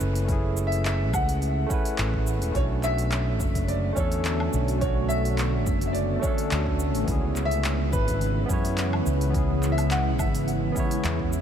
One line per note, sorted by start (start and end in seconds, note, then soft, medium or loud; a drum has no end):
0.00 1.14 F#1 medium
0.00 0.24 A3 loud
0.00 0.28 C#4 medium
0.00 0.30 E4 medium
0.00 0.32 G#4 medium
0.00 0.27 B4 loud
0.00 cabasa medium
0.16 open hi-hat medium
0.16 cabasa soft
0.25 1.65 A3 medium
0.25 1.67 C#4 medium
0.25 kick loud
0.25 open hi-hat soft
0.25 cabasa soft
0.30 1.68 E4 medium
0.30 1.69 G#4 medium
0.57 cabasa medium
0.67 0.84 E5 medium
0.72 open hi-hat medium
0.72 cabasa soft
0.85 1.15 E5 loud
0.85 clap loud
0.85 open hi-hat soft
0.85 cabasa soft
1.14 1.64 C#2 loud
1.14 2.23 F#5 loud
1.14 kick loud
1.14 cabasa medium
1.14 low woodblock medium
1.29 open hi-hat medium
1.29 cabasa soft
1.42 open hi-hat soft
1.42 cabasa soft
1.66 2.50 A3 loud
1.66 2.51 C#4 medium
1.66 kick loud
1.70 2.53 E4 medium
1.70 2.54 B4 loud
1.70 cabasa medium
1.85 open hi-hat medium
1.85 cabasa soft
1.98 2.42 A1 medium
1.98 clap loud
1.98 open hi-hat soft
1.98 cabasa soft
2.14 kick medium
2.27 cabasa medium
2.42 2.51 E1 medium
2.42 open hi-hat medium
2.42 cabasa soft
2.52 3.40 B1 medium
2.52 7.04 D3 medium
2.52 3.91 A3 medium
2.52 7.04 B3 medium
2.52 3.93 C#4 medium
2.52 7.04 C#5 medium
2.52 kick loud
2.52 open hi-hat soft
2.52 cabasa soft
2.56 7.04 A3 medium
2.56 3.94 D4 medium
2.56 7.04 F#4 medium
2.56 3.96 F#4 medium
2.56 2.62 C#5 loud
2.83 3.65 E5 loud
2.83 clap soft
2.83 cabasa medium
2.98 open hi-hat medium
2.98 cabasa soft
3.12 clap medium
3.12 open hi-hat soft
3.12 cabasa soft
3.40 3.90 F#1 loud
3.40 kick loud
3.40 cabasa medium
3.55 kick medium
3.55 open hi-hat medium
3.55 cabasa soft
3.68 3.98 D5 loud
3.68 open hi-hat soft
3.68 cabasa soft
3.92 4.76 A3 medium
3.92 4.78 C#4 loud
3.97 4.47 E2 medium
3.97 4.79 D4 medium
3.97 4.80 A4 loud
3.97 4.49 C#5 medium
3.97 kick loud
3.97 cabasa medium
4.12 open hi-hat medium
4.12 cabasa soft
4.25 clap loud
4.25 open hi-hat soft
4.25 cabasa soft
4.40 low woodblock medium
4.53 5.67 B1 medium
4.53 cabasa medium
4.68 open hi-hat medium
4.68 cabasa soft
4.78 6.18 A3 medium
4.78 6.19 C#4 medium
4.78 5.11 C#5 loud
4.78 kick loud
4.78 open hi-hat soft
4.78 cabasa soft
4.83 6.21 D4 medium
4.83 6.22 F#4 medium
5.09 5.86 E5 loud
5.09 cabasa medium
5.25 open hi-hat medium
5.25 cabasa soft
5.38 clap medium
5.38 open hi-hat soft
5.38 cabasa soft
5.66 6.17 F#1 loud
5.66 kick loud
5.66 cabasa medium
5.81 open hi-hat medium
5.81 cabasa soft
5.87 5.94 E5 medium
5.93 6.14 D5 medium
5.93 open hi-hat soft
5.93 cabasa soft
6.16 7.03 A3 loud
6.16 6.23 D5 medium
6.22 7.04 C#4 medium
6.22 7.06 D4 medium
6.22 6.75 C#5 medium
6.22 kick loud
6.22 cabasa medium
6.27 7.07 A4 loud
6.38 open hi-hat medium
6.38 cabasa soft
6.51 6.95 D2 medium
6.51 clap loud
6.51 open hi-hat soft
6.51 cabasa soft
6.67 kick medium
6.80 cabasa medium
6.95 7.04 A1 medium
6.95 open hi-hat medium
6.95 cabasa soft
7.04 7.94 C#2 loud
7.04 8.44 B3 medium
7.04 8.46 C#4 medium
7.04 kick loud
7.04 open hi-hat soft
7.04 cabasa soft
7.08 11.41 C#3 medium
7.08 11.41 E3 medium
7.08 11.41 G#3 medium
7.08 11.41 B3 medium
7.08 11.41 E4 loud
7.08 8.47 E4 medium
7.08 8.48 G#4 medium
7.36 clap soft
7.36 cabasa medium
7.45 7.81 E5 loud
7.51 open hi-hat medium
7.51 cabasa soft
7.64 clap loud
7.64 open hi-hat soft
7.64 cabasa soft
7.92 8.43 G#1 loud
7.92 9.02 B4 loud
7.92 kick loud
7.92 cabasa medium
8.08 kick medium
8.08 open hi-hat medium
8.08 cabasa soft
8.21 open hi-hat soft
8.21 cabasa soft
8.46 9.00 F#2 medium
8.46 9.29 B3 loud
8.46 9.31 C#4 medium
8.46 kick loud
8.46 cabasa medium
8.51 9.32 E4 loud
8.51 9.33 C#5 loud
8.65 open hi-hat medium
8.65 cabasa soft
8.78 clap loud
8.78 open hi-hat soft
8.78 cabasa soft
8.93 low woodblock medium
9.06 10.19 C#2 medium
9.06 cabasa medium
9.21 open hi-hat medium
9.21 cabasa soft
9.31 10.71 B3 medium
9.31 10.72 C#4 medium
9.31 kick loud
9.31 open hi-hat soft
9.35 10.73 E4 medium
9.35 10.75 G#4 medium
9.35 cabasa soft
9.63 clap soft
9.63 cabasa medium
9.72 9.90 E5 loud
9.78 open hi-hat medium
9.78 cabasa soft
9.78 low woodblock medium
9.91 10.20 F#5 loud
9.91 clap loud
9.91 open hi-hat soft
9.91 cabasa soft
10.19 10.70 G#1 loud
10.19 11.00 E5 loud
10.19 kick loud
10.19 cabasa medium
10.19 low woodblock medium
10.35 open hi-hat medium
10.35 cabasa soft
10.48 open hi-hat soft
10.48 cabasa soft
10.72 11.41 B3 loud
10.72 11.41 C#4 medium
10.72 kick loud
10.76 11.41 E4 medium
10.76 11.41 C#5 loud
10.76 cabasa medium
10.91 open hi-hat medium
10.91 cabasa soft
11.04 11.41 E2 medium
11.04 clap loud
11.04 open hi-hat soft
11.04 cabasa soft
11.20 kick medium
11.33 cabasa medium